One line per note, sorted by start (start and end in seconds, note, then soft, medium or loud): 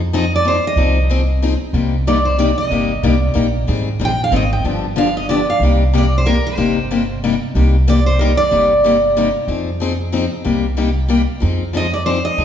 0.00 0.57 F2 medium
0.13 0.24 F3 medium
0.13 0.24 C4 medium
0.13 0.24 D#4 medium
0.13 0.24 G#4 medium
0.13 0.32 D#5 medium
0.36 0.47 D5 medium
0.45 0.55 F3 medium
0.45 0.56 C4 medium
0.45 0.56 D#4 medium
0.45 0.56 G#4 medium
0.45 0.64 C5 medium
0.67 1.59 D#5 medium
0.76 1.54 C2 medium
0.76 0.97 F3 medium
0.76 0.97 C4 medium
0.76 0.97 D#4 medium
0.76 0.98 G#4 medium
1.10 1.20 F3 medium
1.10 1.21 C4 medium
1.10 1.21 D#4 medium
1.10 1.21 G#4 medium
1.42 1.53 F3 medium
1.42 1.53 C4 medium
1.42 1.53 D#4 medium
1.42 1.53 G#4 medium
1.73 2.51 C2 medium
1.73 1.94 C3 medium
1.73 1.94 G3 medium
1.73 1.94 A#3 medium
1.73 1.95 D#4 medium
1.73 1.95 G4 medium
2.07 2.17 C3 medium
2.07 2.18 G3 medium
2.07 2.18 A#3 medium
2.07 2.18 D#4 medium
2.07 2.18 G4 medium
2.07 2.25 D5 medium
2.25 2.38 C5 medium
2.38 2.49 C3 medium
2.38 2.50 G3 medium
2.38 2.50 A#3 medium
2.38 2.50 D#4 medium
2.38 2.50 G4 medium
2.38 2.57 D5 medium
2.58 3.08 D#5 medium
2.70 2.96 G1 medium
2.70 2.91 C3 medium
2.70 2.91 G3 medium
2.70 2.91 A#3 medium
2.70 2.92 D#4 medium
2.70 2.92 G4 medium
3.03 3.30 C2 medium
3.03 3.14 C3 medium
3.03 3.14 G3 medium
3.03 3.14 A#3 medium
3.03 3.14 D#4 medium
3.03 3.14 G4 medium
3.08 3.31 D5 medium
3.34 3.63 A#1 medium
3.34 3.45 C3 medium
3.34 3.45 G3 medium
3.34 3.46 A#3 medium
3.34 3.46 D#4 medium
3.34 3.46 G4 medium
3.67 3.94 G#1 medium
3.67 3.88 D#3 medium
3.67 3.88 G3 medium
3.67 3.88 C4 medium
3.67 3.88 D#4 medium
3.67 3.88 G#4 medium
3.99 4.27 A#1 medium
3.99 4.11 D#3 medium
3.99 4.11 G3 medium
3.99 4.11 C4 medium
3.99 4.11 D#4 medium
3.99 4.11 G#4 medium
4.05 4.21 G5 medium
4.24 4.35 F5 medium
4.31 4.59 G#1 medium
4.31 4.43 D#3 medium
4.31 4.43 G3 medium
4.31 4.43 C4 medium
4.31 4.43 D#4 medium
4.31 4.43 G#4 medium
4.36 4.52 D#5 medium
4.53 4.64 G5 medium
4.64 5.42 G1 medium
4.64 4.85 D3 medium
4.64 4.85 F3 medium
4.64 4.85 B3 medium
4.64 4.85 D4 medium
4.64 4.85 G4 medium
4.96 5.07 D3 medium
4.96 5.07 F3 medium
4.96 5.07 B3 medium
4.96 5.08 D4 medium
4.96 5.08 G4 medium
4.96 5.17 F5 medium
5.17 5.29 D#5 medium
5.29 5.40 D3 medium
5.29 5.40 F3 medium
5.29 5.40 B3 medium
5.29 5.40 D4 medium
5.29 5.41 G4 medium
5.29 5.47 D5 medium
5.50 5.61 F5 medium
5.60 6.38 C2 medium
5.60 5.82 C3 medium
5.60 5.82 G3 medium
5.60 5.82 A#3 medium
5.60 5.82 D#4 medium
5.64 5.83 G4 medium
5.93 6.04 C3 medium
5.93 6.04 G3 medium
5.93 6.05 A#3 medium
5.93 6.05 D#4 medium
5.93 6.05 G4 medium
5.98 6.16 D5 medium
6.18 6.28 C5 medium
6.26 6.37 C3 medium
6.26 6.36 G3 medium
6.26 6.37 A#3 medium
6.26 6.37 D#4 medium
6.26 6.37 G4 medium
6.26 6.46 A#4 medium
6.47 7.19 C5 medium
6.57 7.35 G1 medium
6.57 6.78 C3 medium
6.57 6.78 G3 medium
6.57 6.78 A#3 medium
6.57 6.78 D#4 medium
6.57 6.78 G4 medium
6.91 7.01 C3 medium
6.91 7.02 G3 medium
6.91 7.02 A#3 medium
6.91 7.02 D#4 medium
6.91 7.02 G4 medium
7.24 7.34 C3 medium
7.24 7.34 G3 medium
7.24 7.34 A#3 medium
7.24 7.34 D#4 medium
7.24 7.34 G4 medium
7.55 8.32 C2 medium
7.55 7.75 C3 medium
7.55 7.75 G3 medium
7.55 7.75 A#3 medium
7.55 7.76 D#4 medium
7.55 7.76 G4 medium
7.87 7.98 C3 medium
7.87 7.98 G3 medium
7.87 7.98 A#3 medium
7.87 7.98 D#4 medium
7.87 7.99 G4 medium
7.87 8.06 D5 medium
8.06 8.18 C5 medium
8.19 8.31 C3 medium
8.19 8.31 G3 medium
8.19 8.31 A#3 medium
8.19 8.31 D#4 medium
8.19 8.31 G4 medium
8.19 8.37 A#4 medium
8.37 9.31 D5 medium
8.51 9.29 G1 medium
8.51 8.72 C3 medium
8.51 8.72 G3 medium
8.51 8.72 A#3 medium
8.51 8.72 D#4 medium
8.51 8.72 G4 medium
8.84 8.95 C3 medium
8.84 8.95 G3 medium
8.84 8.96 A#3 medium
8.84 8.96 D#4 medium
8.84 8.96 G4 medium
9.17 9.27 C3 medium
9.17 9.28 G3 medium
9.17 9.28 A#3 medium
9.17 9.28 D#4 medium
9.17 9.28 G4 medium
9.48 10.26 F2 medium
9.48 9.69 F3 medium
9.48 9.69 C4 medium
9.48 9.69 D#4 medium
9.48 9.69 G#4 medium
9.80 9.91 F3 medium
9.80 9.92 C4 medium
9.80 9.92 D#4 medium
9.80 9.92 G#4 medium
10.12 10.24 F3 medium
10.12 10.24 C4 medium
10.12 10.24 D#4 medium
10.12 10.25 G#4 medium
10.44 11.23 C2 medium
10.44 10.65 C3 medium
10.44 10.66 G3 medium
10.44 10.65 A#3 medium
10.44 10.66 D#4 medium
10.44 10.66 G4 medium
10.77 10.88 C3 medium
10.77 10.88 G3 medium
10.77 10.89 A#3 medium
10.77 10.89 D#4 medium
10.77 10.89 G4 medium
11.08 11.20 C3 medium
11.08 11.21 G3 medium
11.08 11.21 A#3 medium
11.08 11.21 D#4 medium
11.08 11.21 G4 medium
11.40 12.20 F2 medium
11.40 11.62 F3 medium
11.40 11.62 C4 medium
11.40 11.62 D#4 medium
11.40 11.63 G#4 medium
11.73 11.85 F3 medium
11.73 11.86 C4 medium
11.73 11.86 D#4 medium
11.73 11.86 G#4 medium
11.73 11.93 D#5 medium
11.94 12.05 D5 medium
12.06 12.18 F3 medium
12.06 12.18 C4 medium
12.06 12.18 D#4 medium
12.06 12.18 G#4 medium
12.06 12.24 C5 medium
12.25 12.45 D#5 medium
12.38 12.45 C2 medium
12.38 12.45 F3 medium
12.38 12.45 C4 medium
12.38 12.45 D#4 medium
12.38 12.45 G#4 medium